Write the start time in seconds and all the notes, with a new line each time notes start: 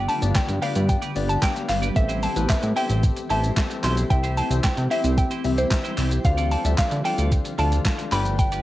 Already playing: D3 G3 B3 D4 G4 D5
0.08 G4 B4 D5 A5, open hi-hat, shaker
0.22 G1 B3 D4 G4 D5, closed hi-hat, shaker
0.35 G2 G5, muted clean electric guitar stroke, kick, snare, clap, closed hi-hat, shaker
0.48 G2, muted clean electric guitar stroke, closed hi-hat, shaker
0.62 B3 D4 G4 B4 D5 F5, open hi-hat, shaker
0.75 G2 G4 B4 D5, closed hi-hat, shaker
0.89 G5, muted clean electric guitar stroke, kick, closed hi-hat, shaker
1.02 G4 B4 D5, closed hi-hat, shaker
1.15 G1 B3 D4 G4 D5, muted clean electric guitar stroke, open hi-hat, shaker
1.29 A5, muted clean electric guitar stroke, closed hi-hat, shaker
1.42 B3 D4 G4 B4 D5 F5 G5, kick, snare, clap, closed hi-hat, shaker
1.55 muted clean electric guitar stroke, closed hi-hat, shaker
1.69 G1 F5, muted clean electric guitar stroke, clap, open hi-hat, shaker
1.82 G4 B4 D5, closed hi-hat, shaker
1.96 A1 E3 A3 C4 G4 A4 E5, kick, closed hi-hat, shaker
2.09 E4 G4 C5, closed hi-hat, shaker
2.22 E4 G4 C5 A5, open hi-hat, shaker
2.36 A1 C4 G4 A4 B4, muted clean electric guitar stroke, closed hi-hat, shaker
2.49 A2 E5, muted clean electric guitar stroke, kick, snare, clap, closed hi-hat, shaker
2.63 A2, muted clean electric guitar stroke, closed hi-hat, shaker
2.76 C4 E4 G4 A4 C5 E5 G5, open hi-hat, shaker
2.89 A1 E4 G4 C5, closed hi-hat, shaker
3.03 kick, closed hi-hat, shaker
3.16 muted clean electric guitar stroke, closed hi-hat, shaker
3.29 A1 C4 E4 G4 A4 C5 E5 A5, open hi-hat, shaker
3.43 muted clean electric guitar stroke, closed hi-hat, shaker
3.56 C4 G4 A4 E5, muted clean electric guitar stroke, kick, snare, clap, closed hi-hat, shaker
3.70 muted clean electric guitar stroke, closed hi-hat, shaker
3.83 B1 E4 G4 C5 C6, clap, open hi-hat, shaker
3.97 muted clean electric guitar stroke, closed hi-hat, shaker
4.10 C2 E3 G3 C4 E4 G4 E5 G5, muted clean electric guitar stroke, kick, closed hi-hat, shaker
4.24 E4 G4 C5, closed hi-hat, shaker
4.37 E4 G4 C5 A5, open hi-hat, shaker
4.50 C2 C4 E4 G4 C5, muted clean electric guitar stroke, closed hi-hat, shaker
4.64 C3 G5, muted clean electric guitar stroke, kick, snare, clap, closed hi-hat, shaker
4.77 C3, muted clean electric guitar stroke, closed hi-hat, shaker
4.90 C4 E4 G4 C5 E5, open hi-hat, shaker
5.04 C2 E4 G4 C5, closed hi-hat, shaker
5.17 G5, muted clean electric guitar stroke, kick, closed hi-hat, shaker
5.31 E4 G4 C5, closed hi-hat, shaker
5.44 C2 C4 E4 G4 E5, open hi-hat, shaker
5.57 C5, muted clean electric guitar stroke, closed hi-hat, shaker
5.71 C4 E4 G4 E5, muted clean electric guitar stroke, kick, snare, clap, closed hi-hat, shaker
5.84 E4 G4 C5, closed hi-hat, shaker
5.97 C2 E4 G4 C5, clap, open hi-hat, shaker
6.11 muted clean electric guitar stroke, closed hi-hat, shaker
6.24 D2 D3 F3 A3 D4 F4 A4 F5, muted clean electric guitar stroke, kick, closed hi-hat, shaker
6.37 F4 A4 D5, closed hi-hat, shaker
6.51 F4 A4 D5 A5, open hi-hat, shaker
6.64 D2 D4 F4 A4 E5, muted clean electric guitar stroke, closed hi-hat, shaker
6.78 D3 F5, muted clean electric guitar stroke, kick, snare, clap, closed hi-hat, shaker
6.91 D3, muted clean electric guitar stroke, closed hi-hat, shaker
7.04 D4 F4 A4 D5 F5 G5, open hi-hat, shaker
7.18 D2 F4 A4 D5, closed hi-hat, shaker
7.32 kick, closed hi-hat, shaker
7.45 muted clean electric guitar stroke, closed hi-hat, shaker
7.58 D2 D4 F4 A4 D5 F5 A5, open hi-hat, shaker
7.72 muted clean electric guitar stroke, closed hi-hat, shaker
7.85 D4 F4 A4 F5, muted clean electric guitar stroke, kick, snare, clap, closed hi-hat, shaker
7.99 muted clean electric guitar stroke, closed hi-hat, shaker
8.12 G1 G3 B3 D4 G4 B4 D5 G5 B5, clap, open hi-hat, shaker
8.25 muted clean electric guitar stroke, closed hi-hat, shaker
8.39 G5, muted clean electric guitar stroke, kick, closed hi-hat, shaker
8.52 G4 B4 D5, closed hi-hat, shaker